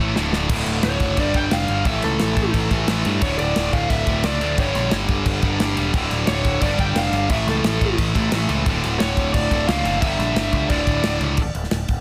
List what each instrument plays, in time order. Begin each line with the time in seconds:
0.00 picked electric bass A1, distorted electric guitar A2 E3 A3
0.16 picked electric bass D1, distorted electric guitar D2 A2 D3, snare
0.33 snare
0.49 picked electric bass D1, distorted electric guitar D2 A2 D3, kick, crash
0.66 picked electric bass D1, snare, crash
0.83 picked electric bass D1, lead electric guitar C#5, snare, crash
1.00 picked electric bass F#1, kick, crash
1.17 picked electric bass G1, distorted electric guitar G2 D3 G3, lead electric guitar D5, kick, crash
1.34 picked electric bass G1, lead electric guitar G5, kick, crash
1.51 picked electric bass F1, lead electric guitar F5, snare, crash
1.68 picked electric bass G1, crash
1.85 picked electric bass A1, distorted electric guitar A2 E3 A3, lead electric guitar E5, kick, crash
2.02 picked electric bass C#2, lead electric guitar A4, snare, crash
2.19 picked electric bass A1, snare, crash
2.37 picked electric bass A1, kick, crash
2.54 picked electric bass A1, kick, crash
2.71 picked electric bass A1, distorted electric guitar A2 E3 A3, kick, crash
2.88 picked electric bass A1, distorted electric guitar A2 E3 A3, snare, crash
3.05 picked electric bass G2, distorted electric guitar A2 E3 A3, crash
3.21 picked electric bass D1, distorted electric guitar D2 A2 D3, lead electric guitar C#5, kick, crash
3.38 picked electric bass D1, lead electric guitar D5, crash
3.56 picked electric bass D1, snare, crash
3.73 picked electric bass D1, lead electric guitar F5, kick, crash
3.89 picked electric bass D1, lead electric guitar E5, kick, crash
4.06 picked electric bass D1, distorted electric guitar D2 A2 D3, kick, crash
4.23 picked electric bass C#2, distorted electric guitar D2 A2 D3, lead electric guitar D5, snare, crash
4.41 picked electric bass D2, distorted electric guitar D2 A2 D3, crash
4.58 picked electric bass G1, distorted electric guitar G2 D3 G3, lead electric guitar C#5, kick, crash
4.75 picked electric bass A#1, snare, crash
4.91 picked electric bass G1, snare, crash
5.08 picked electric bass G1, kick, crash
5.26 picked electric bass G1, kick, crash
5.42 picked electric bass G1, distorted electric guitar G2 D3 G3, kick, crash
5.60 picked electric bass G1, distorted electric guitar G2 D3 G3, snare, crash
5.76 picked electric bass E1, distorted electric guitar G2 D3 G3, crash
5.94 picked electric bass D1, distorted electric guitar D2 A2 D3, kick, crash
6.10 picked electric bass D1, snare, crash
6.27 picked electric bass D1, lead electric guitar C#5, snare, crash
6.44 picked electric bass D1, kick, crash
6.61 picked electric bass G1, distorted electric guitar G2 D3 G3, lead electric guitar D5, kick, crash
6.78 picked electric bass G1, lead electric guitar G5, kick, crash
6.95 picked electric bass F1, lead electric guitar F5, snare, crash
7.12 picked electric bass G1, crash
7.29 picked electric bass A1, distorted electric guitar A2 E3 A3, lead electric guitar E5, kick, crash
7.47 picked electric bass C#2, lead electric guitar A4, snare, crash
7.63 picked electric bass A1, snare, crash
7.81 picked electric bass A1, kick, crash
7.98 picked electric bass A1, kick, crash
8.14 picked electric bass A1, distorted electric guitar A2 E3 A3, kick, crash
8.32 picked electric bass A1, distorted electric guitar A2 E3 A3, snare, crash
8.49 picked electric bass C#2, distorted electric guitar A2 E3 A3, crash
8.66 picked electric bass D1, distorted electric guitar D2 A2 D3, kick, crash
8.84 picked electric bass D1, snare, crash
9.00 picked electric bass D1, lead electric guitar C#5, snare, crash
9.17 picked electric bass D1, kick, crash
9.34 picked electric bass D1, lead electric guitar D5, kick, crash
9.51 picked electric bass D1, distorted electric guitar D2 A2 D3, kick, crash
9.67 picked electric bass C#2, distorted electric guitar D2 A2 D3, lead electric guitar F5, snare, crash
9.85 picked electric bass F#1, distorted electric guitar D2 A2 D3, crash
10.01 picked electric bass G1, distorted electric guitar G2 D3 G3, lead electric guitar E5, kick, crash
10.19 picked electric bass A#1, snare, crash
10.35 picked electric bass G1, snare, crash
10.52 picked electric bass C#2, kick, crash
10.69 picked electric bass D1, distorted electric guitar D2 A2 D3, lead electric guitar D5, kick, crash
10.87 picked electric bass D1, kick, crash
11.03 picked electric bass D1, snare, crash
11.21 picked electric bass C#2, crash
11.37 picked electric bass D1, kick, crash
11.55 picked electric bass D1, crash
11.64 snare
11.71 picked electric bass D1, snare, crash
11.88 picked electric bass D1, kick, crash